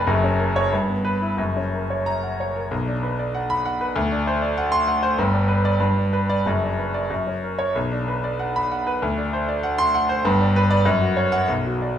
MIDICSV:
0, 0, Header, 1, 2, 480
1, 0, Start_track
1, 0, Key_signature, 2, "minor"
1, 0, Tempo, 655738
1, 51, Time_signature, 2, 2, 24, 8
1, 2453, Tempo, 613497
1, 4373, Tempo, 647249
1, 6293, Tempo, 614754
1, 8213, Tempo, 643087
1, 9058, End_track
2, 0, Start_track
2, 0, Title_t, "Grand piano"
2, 0, Program_c, 0, 0
2, 0, Control_c, 0, 64, 127
2, 49, Note_on_c, 0, 30, 111
2, 53, Note_on_c, 0, 42, 109
2, 65, Control_c, 0, 64, 0
2, 173, Note_on_c, 0, 61, 85
2, 198, Control_c, 0, 64, 127
2, 289, Note_on_c, 0, 70, 80
2, 360, Note_off_c, 0, 61, 0
2, 410, Note_on_c, 0, 73, 104
2, 478, Note_off_c, 0, 70, 0
2, 510, Note_off_c, 0, 30, 0
2, 511, Note_off_c, 0, 42, 0
2, 527, Note_off_c, 0, 73, 0
2, 527, Note_on_c, 0, 43, 97
2, 539, Control_c, 0, 64, 0
2, 644, Note_on_c, 0, 59, 67
2, 674, Control_c, 0, 64, 127
2, 766, Note_on_c, 0, 71, 90
2, 837, Note_off_c, 0, 59, 0
2, 890, Note_on_c, 0, 64, 74
2, 961, Note_off_c, 0, 71, 0
2, 997, Note_off_c, 0, 43, 0
2, 1004, Note_on_c, 0, 30, 75
2, 1010, Note_on_c, 0, 42, 87
2, 1012, Note_off_c, 0, 64, 0
2, 1025, Control_c, 0, 64, 0
2, 1146, Note_on_c, 0, 61, 65
2, 1155, Control_c, 0, 64, 127
2, 1271, Note_on_c, 0, 70, 64
2, 1339, Note_off_c, 0, 61, 0
2, 1393, Note_on_c, 0, 73, 70
2, 1462, Note_off_c, 0, 70, 0
2, 1509, Note_on_c, 0, 82, 96
2, 1584, Note_off_c, 0, 73, 0
2, 1633, Note_on_c, 0, 78, 63
2, 1702, Note_off_c, 0, 82, 0
2, 1758, Note_on_c, 0, 73, 73
2, 1825, Note_off_c, 0, 78, 0
2, 1876, Note_on_c, 0, 70, 66
2, 1945, Note_off_c, 0, 73, 0
2, 1955, Note_off_c, 0, 30, 0
2, 1958, Note_off_c, 0, 42, 0
2, 1985, Note_on_c, 0, 35, 95
2, 1991, Note_off_c, 0, 70, 0
2, 2002, Control_c, 0, 64, 0
2, 2103, Note_on_c, 0, 62, 77
2, 2139, Control_c, 0, 64, 127
2, 2218, Note_on_c, 0, 71, 72
2, 2290, Note_off_c, 0, 62, 0
2, 2336, Note_on_c, 0, 74, 75
2, 2405, Note_off_c, 0, 71, 0
2, 2449, Note_on_c, 0, 78, 90
2, 2525, Note_off_c, 0, 74, 0
2, 2569, Note_on_c, 0, 83, 109
2, 2645, Note_off_c, 0, 78, 0
2, 2690, Note_on_c, 0, 78, 91
2, 2764, Note_off_c, 0, 83, 0
2, 2811, Note_on_c, 0, 71, 83
2, 2884, Note_off_c, 0, 78, 0
2, 2904, Note_off_c, 0, 35, 0
2, 2927, Note_on_c, 0, 38, 113
2, 2933, Note_off_c, 0, 71, 0
2, 2948, Control_c, 0, 64, 0
2, 3051, Note_on_c, 0, 62, 91
2, 3079, Control_c, 0, 64, 127
2, 3175, Note_on_c, 0, 72, 87
2, 3245, Note_off_c, 0, 62, 0
2, 3293, Note_on_c, 0, 74, 83
2, 3365, Note_off_c, 0, 72, 0
2, 3411, Note_on_c, 0, 78, 99
2, 3483, Note_off_c, 0, 74, 0
2, 3522, Note_on_c, 0, 84, 114
2, 3601, Note_off_c, 0, 78, 0
2, 3647, Note_on_c, 0, 78, 96
2, 3716, Note_off_c, 0, 84, 0
2, 3764, Note_on_c, 0, 72, 95
2, 3838, Note_off_c, 0, 78, 0
2, 3854, Note_off_c, 0, 38, 0
2, 3884, Note_off_c, 0, 72, 0
2, 3885, Note_on_c, 0, 31, 109
2, 3887, Note_on_c, 0, 43, 116
2, 3899, Control_c, 0, 64, 0
2, 4000, Note_on_c, 0, 62, 89
2, 4049, Control_c, 0, 64, 127
2, 4121, Note_on_c, 0, 71, 86
2, 4198, Note_off_c, 0, 62, 0
2, 4251, Note_on_c, 0, 74, 96
2, 4321, Note_off_c, 0, 71, 0
2, 4357, Note_off_c, 0, 43, 0
2, 4358, Note_off_c, 0, 31, 0
2, 4369, Note_on_c, 0, 43, 103
2, 4374, Note_off_c, 0, 74, 0
2, 4386, Control_c, 0, 64, 0
2, 4497, Note_on_c, 0, 62, 71
2, 4500, Control_c, 0, 64, 127
2, 4614, Note_on_c, 0, 71, 85
2, 4687, Note_off_c, 0, 62, 0
2, 4736, Note_on_c, 0, 74, 100
2, 4807, Note_off_c, 0, 71, 0
2, 4838, Note_off_c, 0, 43, 0
2, 4855, Note_on_c, 0, 30, 86
2, 4857, Note_off_c, 0, 74, 0
2, 4865, Note_on_c, 0, 42, 95
2, 4868, Control_c, 0, 64, 0
2, 4982, Note_on_c, 0, 62, 70
2, 5016, Control_c, 0, 64, 127
2, 5097, Note_on_c, 0, 71, 62
2, 5175, Note_off_c, 0, 62, 0
2, 5217, Note_on_c, 0, 74, 81
2, 5292, Note_off_c, 0, 71, 0
2, 5325, Note_off_c, 0, 42, 0
2, 5326, Note_off_c, 0, 30, 0
2, 5336, Note_on_c, 0, 42, 93
2, 5339, Note_off_c, 0, 74, 0
2, 5353, Control_c, 0, 64, 0
2, 5460, Note_on_c, 0, 61, 65
2, 5473, Control_c, 0, 64, 127
2, 5584, Note_on_c, 0, 70, 66
2, 5651, Note_off_c, 0, 61, 0
2, 5693, Note_on_c, 0, 73, 92
2, 5772, Note_off_c, 0, 70, 0
2, 5801, Note_off_c, 0, 42, 0
2, 5815, Note_off_c, 0, 73, 0
2, 5819, Note_on_c, 0, 35, 95
2, 5832, Control_c, 0, 64, 0
2, 5937, Note_on_c, 0, 62, 81
2, 5946, Control_c, 0, 64, 127
2, 6061, Note_on_c, 0, 71, 75
2, 6129, Note_off_c, 0, 62, 0
2, 6177, Note_on_c, 0, 74, 80
2, 6249, Note_off_c, 0, 71, 0
2, 6293, Note_on_c, 0, 78, 85
2, 6368, Note_off_c, 0, 74, 0
2, 6422, Note_on_c, 0, 83, 106
2, 6489, Note_off_c, 0, 78, 0
2, 6543, Note_on_c, 0, 78, 84
2, 6613, Note_off_c, 0, 83, 0
2, 6663, Note_on_c, 0, 71, 88
2, 6734, Note_off_c, 0, 78, 0
2, 6750, Note_off_c, 0, 35, 0
2, 6781, Note_off_c, 0, 71, 0
2, 6784, Note_on_c, 0, 38, 99
2, 6793, Control_c, 0, 64, 0
2, 6902, Note_on_c, 0, 62, 81
2, 6928, Control_c, 0, 64, 127
2, 7026, Note_on_c, 0, 72, 82
2, 7092, Note_off_c, 0, 62, 0
2, 7145, Note_on_c, 0, 74, 83
2, 7212, Note_off_c, 0, 72, 0
2, 7261, Note_on_c, 0, 78, 101
2, 7331, Note_off_c, 0, 74, 0
2, 7379, Note_on_c, 0, 84, 123
2, 7450, Note_off_c, 0, 78, 0
2, 7504, Note_on_c, 0, 78, 106
2, 7569, Note_off_c, 0, 84, 0
2, 7619, Note_on_c, 0, 72, 97
2, 7693, Note_off_c, 0, 78, 0
2, 7710, Note_off_c, 0, 38, 0
2, 7736, Note_on_c, 0, 31, 107
2, 7738, Note_off_c, 0, 72, 0
2, 7742, Note_on_c, 0, 43, 122
2, 7749, Control_c, 0, 64, 0
2, 7864, Note_on_c, 0, 62, 95
2, 7872, Control_c, 0, 64, 127
2, 7986, Note_on_c, 0, 71, 100
2, 8052, Note_off_c, 0, 62, 0
2, 8098, Note_on_c, 0, 74, 113
2, 8172, Note_off_c, 0, 71, 0
2, 8201, Note_off_c, 0, 31, 0
2, 8204, Note_off_c, 0, 43, 0
2, 8213, Note_on_c, 0, 42, 120
2, 8216, Note_off_c, 0, 74, 0
2, 8227, Control_c, 0, 64, 0
2, 8330, Note_on_c, 0, 66, 87
2, 8346, Control_c, 0, 64, 127
2, 8447, Note_on_c, 0, 73, 89
2, 8518, Note_off_c, 0, 66, 0
2, 8562, Note_on_c, 0, 78, 113
2, 8638, Note_off_c, 0, 73, 0
2, 8672, Note_off_c, 0, 42, 0
2, 8681, Note_on_c, 0, 35, 96
2, 8685, Note_off_c, 0, 78, 0
2, 8700, Control_c, 0, 64, 0
2, 8818, Note_on_c, 0, 66, 78
2, 8825, Control_c, 0, 64, 127
2, 8934, Note_on_c, 0, 74, 74
2, 9010, Note_off_c, 0, 66, 0
2, 9058, Note_off_c, 0, 35, 0
2, 9058, Note_off_c, 0, 74, 0
2, 9058, End_track
0, 0, End_of_file